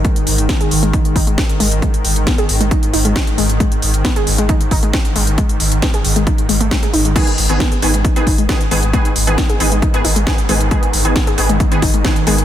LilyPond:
<<
  \new Staff \with { instrumentName = "Synth stab" } { \time 4/4 \key gis \minor \tempo 4 = 135 r1 | r1 | r1 | r1 |
<dis b gis'>16 r8 <dis b gis'>8. <dis b gis'>16 r8 <dis b gis'>16 r8 <dis b gis'>16 r16 <dis b gis'>16 r16 | <dis b gis'>16 r8 <dis b gis'>8. <dis b gis'>16 r8 <dis b gis'>16 r8 <dis b gis'>16 r16 <dis b gis'>16 r16 | <dis b gis'>16 r8 <dis b gis'>8. <dis b gis'>16 r8 <dis b gis'>16 r8 <dis b gis'>16 r16 <dis b gis'>16 r16 | }
  \new Staff \with { instrumentName = "Synth arpeggio sound" } { \time 4/4 \key gis \minor gis16 r8. b16 gis'16 r16 gis16 dis'16 r16 dis'16 gis16 r8 gis16 r16 | gis16 r8. b16 gis'16 r16 gis16 dis'16 r16 dis'16 gis16 r8 gis16 r16 | gis16 r8. b16 gis'16 r16 gis16 dis'16 r16 dis'16 gis16 r8 gis16 r16 | gis16 r8. b16 gis'16 r16 gis16 dis'16 r16 gis16 a16 gis16 gis'16 dis'16 gis16 |
gis16 r8. b16 gis'16 r16 gis16 dis'16 r16 dis'16 gis16 r8 gis16 r16 | gis16 r8. b16 gis'16 r16 gis16 dis'16 r16 dis'16 gis16 r8 gis16 r16 | gis16 r8. b16 gis'16 r16 gis16 dis'16 r16 dis'16 gis16 r8 gis16 r16 | }
  \new Staff \with { instrumentName = "Synth drone" } { \clef bass \time 4/4 \key gis \minor <gis, dis>1~ | <gis, dis>1~ | <gis, dis>1~ | <gis, dis>1 |
<gis, dis>1~ | <gis, dis>1~ | <gis, dis>1 | }
  \new Staff \with { instrumentName = "Sub bass" } { \clef bass \time 4/4 \key gis \minor r8 gis,,16 gis,,16 r8 gis,,16 gis,,16 r8 gis,,16 gis,,16 r8 gis,,16 gis,,16 | r8 gis,,16 gis,,16 r8 gis,,16 gis,,16 r8 gis,,16 gis,,16 r8 gis,,16 gis,,16 | r8 gis,,16 gis,,16 r8 gis,,16 gis,,16 r8 gis,,16 gis,,16 r8 gis,,16 gis,,16 | r8 gis,,16 gis,,16 r8 gis,,16 gis,,16 r8 gis,,16 gis,,16 r8 gis,,16 gis,,16 |
r8 gis,,16 gis,,16 r8 gis,,16 gis,,16 r8 gis,,16 gis,,16 r8 gis,,16 gis,,16 | r8 gis,,16 gis,,16 r8 gis,,16 gis,,16 r8 gis,,16 gis,,16 r8 gis,,16 gis,,16 | r8 gis,,16 gis,,16 r8 gis,,16 gis,,16 r8 gis,,16 gis,,16 r8 gis,,16 gis,,16 | }
  \new DrumStaff \with { instrumentName = "Drums" } \drummode { \time 4/4 <hh bd>16 hh16 hho16 hh16 <hh bd sn>16 hh16 hho16 hh16 <hh bd>16 hh16 <hho bd>16 hh16 <hh bd sn>16 hh16 hho16 hh16 | <hh bd>16 hh16 hho16 hh16 <hh bd sn>16 hh16 hho16 hh16 <hh bd>16 hh16 hho16 hh16 <hh bd sn>16 hh16 hho16 hh16 | <hh bd>16 hh16 hho16 hh16 <hh bd sn>16 hh16 hho16 hh16 <hh bd>16 hh16 <hho bd>16 hh16 <hh bd sn>16 hh16 hho16 hh16 | <hh bd>16 hh16 hho16 hh16 <hh bd sn>16 hh16 hho16 hh16 <hh bd>16 hh16 hho16 hh16 <hh bd sn>16 hh16 hho16 hh16 |
<cymc hh bd>16 hh16 hho16 hh16 <hh bd sn>16 hh16 hho16 hh16 <hh bd>16 hh16 <hho bd>16 hh16 <hh bd sn>16 hh16 hho16 hh16 | <hh bd>16 hh16 hho16 hh16 <hh bd sn>16 hh16 hho16 hh16 <hh bd>16 hh16 hho16 hh16 <hh bd sn>16 hh16 hho16 hh16 | <hh bd>16 hh16 hho16 hh16 <hh bd sn>16 hh16 hho16 hh16 <hh bd>16 hh16 <hho bd>16 hh16 <hh bd sn>16 hh16 hho16 hh16 | }
>>